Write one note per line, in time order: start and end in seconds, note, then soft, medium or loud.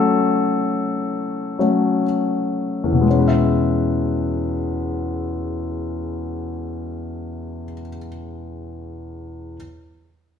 0.00 1.57 F#3 soft
0.00 1.58 A3 soft
0.00 1.59 C#4 soft
0.00 2.03 A4 medium
1.59 2.03 F#3 soft
1.59 2.03 A3 soft
1.59 2.03 C#4 soft
2.84 7.62 E2 soft
2.92 7.71 B2 soft
3.01 7.80 G#3 soft
3.10 7.89 C#4 soft
3.19 7.98 B4 soft
3.28 8.06 E5 soft